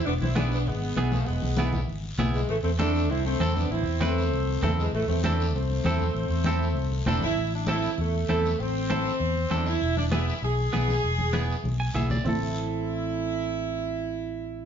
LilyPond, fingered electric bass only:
\new Staff \with { instrumentName = "Fingered electric bass" } { \clef bass \time 4/4 \key a \minor \tempo 4 = 197 e,,8 b,,4. gis,,4 b,,4 | e,,8 b,,4. gis,,4 b,,4 | a,,8 e,4. c,4 e,4 | a,,8 e,4. c,4 e,4 |
a,,8 e,4. c,4 e,4 | a,,8 e,4. c,4 e,,8 gis,,8 | a,,2 e,4 e,4 | a,,2 e,4 e,4 |
e,,2 b,,4 b,,4 | e,,2 b,,4 b,,4 | a,,1~ | a,,1 | }